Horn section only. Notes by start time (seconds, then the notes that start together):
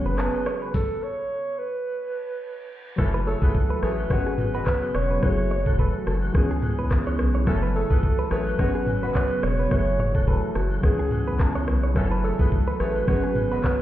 2.99 E3 C#4 A4
3.27 A3 G#4 C#5
3.42 B3 G#4 B4
3.83 A3 G#4 C#5
4.11 G#3 F#4 C#5
4.54 G#3 F#4 B4
7.47 E3 C#4 A4
7.75 A3 G#4 C#5
7.91 B3 G#4 B4
8.31 A3 G#4 C#5
8.59 G#3 F#4 C#5
9.03 G#3 F#4 B4
11.96 E3 C#4 A4
12.24 A3 G#4 C#5
12.40 B3 G#4 B4
12.80 A3 G#4 C#5
13.08 G#3 F#4 C#5
13.52 G#3 F#4 B4